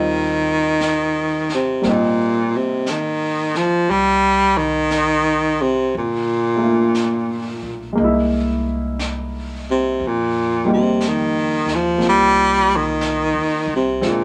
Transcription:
Already playing: D#2 D#3 G3 C4 D#4 F4
0.81 brush sweep, snare, hi-hat pedal
1.49 snare
1.54 C3
1.82 G#1 G3 A#3 C4, brush sweep, snare
1.87 A#2 D#4
2.56 C3
2.86 D#3, brush sweep, snare, hi-hat pedal
3.55 F3, snare
3.88 C2 G3, brush sweep
4.57 D#3
4.91 brush sweep, snare, hi-hat pedal
5.62 C3
5.93 G1, brush sweep
5.98 A#2
6.56 A3 A#3
6.60 D4 F4
6.95 brush sweep, snare, hi-hat pedal
7.62 B1
7.93 G#3 A#3
7.98 C2 D#4, brush sweep
8.04 E4
8.99 brush sweep, snare, hi-hat pedal
9.71 C3
10.00 F2, brush sweep
10.07 A#2
10.65 G3 A#3 D#4 G4
10.73 C3
11.01 brush sweep, snare, hi-hat pedal
11.08 D#3
11.65 D#2, snare
11.75 F3
11.98 C2 A#3 C4 F4, brush sweep, snare
12.09 G3
12.76 D#3
13.01 brush sweep, snare, hi-hat pedal
13.34 D#2
13.67 C2
13.76 C3
14.01 D2 G#3 C4 D4 F4, brush sweep, snare
14.08 A#2

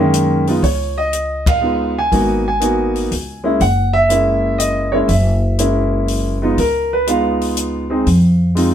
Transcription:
Already playing: F#2 G#3 A#3 C#4 E5
0.00 D#3
0.14 closed hi-hat
0.47 G#3 B3 D#4 F4, open hi-hat
0.62 C#2 C#5, kick, open hi-hat
0.98 D#5
1.13 closed hi-hat
1.46 F5, kick, ride
1.61 G#3 B3 D#4 F4
1.99 G#5
2.12 G#1 A#3 B3 D#4 F#4, kick, open hi-hat
2.48 G#5
2.60 A#3 B3 D#4 F#4, closed hi-hat
2.96 open hi-hat
3.11 C#2, open hi-hat
3.44 G#3 A#3 C#4 E4
3.60 F#1 F#5, kick, open hi-hat
3.93 E5
4.09 G#3 A#3 C#4 E4, closed hi-hat
4.58 D#5, closed hi-hat
4.92 G#3 A#3 C#4 E4 C#5
5.08 F#1 E5, kick, open hi-hat
5.58 G#3 A#3 C#4 E4, closed hi-hat
6.08 open hi-hat
6.42 G#3 B3 D#4 F4
6.58 C#2 A#4, kick, open hi-hat
6.93 B4
7.07 G#3 B3 D#4 F4 F5, closed hi-hat
7.41 open hi-hat
7.57 closed hi-hat
7.90 G#3 C4 D#4 G#4
8.06 F2, kick, open hi-hat
8.55 G#3 C4 D#4 F4, open hi-hat

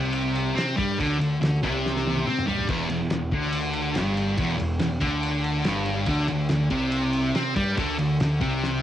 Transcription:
Already playing: C2 C3
0.13 ride
0.35 ride
0.54 C3 C4, snare, ride
0.77 G2 G3, kick, ride
0.99 D2 D3, kick, ride
1.20 D2 D3, ride
1.41 D2 D3, snare, ride
1.63 C2 C3, kick, ride
1.86 snare
1.97 snare
2.07 high tom
2.17 high tom
2.25 C3 C4, mid tom
2.39 mid tom
2.46 G2 G3, floor tom
2.58 floor tom
2.67 E1 E2, kick, crash
2.88 E1 E2, ride
3.10 E1 E2, snare, ride
3.31 D2 D3, kick, ride
3.52 ride
3.73 ride
3.95 G1 G2, snare, ride
4.17 ride
4.38 E1 E2, kick, ride
4.58 E1 E2, ride
4.80 E1 E2, snare, ride
5.00 D2 D3, kick, ride
5.23 ride
5.44 ride
5.64 G1 G2, snare, ride
5.86 ride
6.06 D2 D3, kick, ride
6.28 D2 D3, ride
6.49 D2 D3, snare, ride
6.70 C2 C3, kick, ride
6.92 ride
7.13 ride
7.35 C3 C4, snare, ride
7.56 G2 G3, kick, ride
7.76 D2 D3, kick, ride
7.99 D2 D3, ride
8.20 D2 D3, snare, ride
8.41 C2 C3, kick, ride
8.64 snare

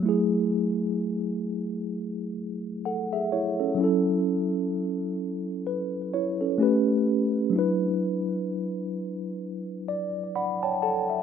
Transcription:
0.00 F#3 A3
0.06 E4 G#4
2.85 A4 F#5
3.13 G#4 E5
3.32 E4 C#5
3.60 C#4 A4
3.75 F#3 C#4
3.81 E4 A4
5.67 B4
6.14 E4 C#5
6.41 C#4 A4
6.58 A3 C#4 G4
6.63 B4
7.50 F#3 D4
7.56 E4 B4
9.88 D5
10.36 D5 F#5 B5
10.63 C#5 G5 A5
10.82 A4 F#5 A5
11.10 E5

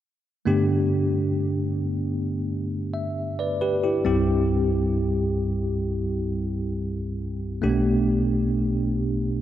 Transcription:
0.46 G2 D3 A3 B3 D4 G4
2.93 E5
3.39 B4 D5
3.61 G4 B4
3.84 E4 G4
4.04 C2 G2 G3 C4 E4 G4
7.62 B1 B2 A3 A#3 D4 G4
7.69 B3

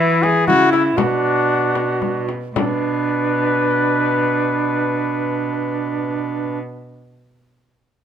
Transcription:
Already playing: E3 E4
0.00 E4
0.23 G#4, frame drum
0.47 C#3 E4 F#4, frame drum
0.72 E4, frame drum
0.97 B2 D4 F#4, frame drum
1.75 frame drum
2.02 frame drum
2.29 frame drum
2.56 B2 D4 B4, frame drum

